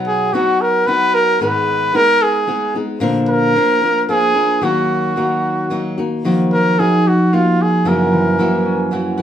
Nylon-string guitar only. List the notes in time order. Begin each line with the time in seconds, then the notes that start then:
Already playing: B2 F#3 B3 D#4 F#4
0.33 F#3 B3 D#4 F#4
0.87 F#3 B3 D#4 F#4
1.40 G#2 D#3 G#3 B3 D#4 G#4
1.93 G#3 B3 D#4 G#4
2.47 G#3 B3 D#4 G#4
2.75 G#3 B3 D#4 G#4
3.00 A#2 D3 F3 A#3 D4 A#4
3.55 F3 A#3 D4 A#4
3.82 F3 A#3 D4 A#4
4.09 F3 A#3 D4 A#4
4.34 F3 A#3 D4 A#4
4.62 D#3 F#3 A#3 D#4 F#4
5.16 F#3 A#3 D#4 F#4
5.70 F#3 A#3 D#4 F#4
5.98 A#3 D#4 F#4
6.25 D#3 A#3 D#4 F#4
6.79 A#3 D#4 F#4
7.33 A#3 D#4 F#4
7.85 F#2 C#3 E3 A#3 E4 F#4
8.39 E3 A#3 E4 F#4
8.91 E3 A#3 E4 F#4
9.18 A#3 E4 F#4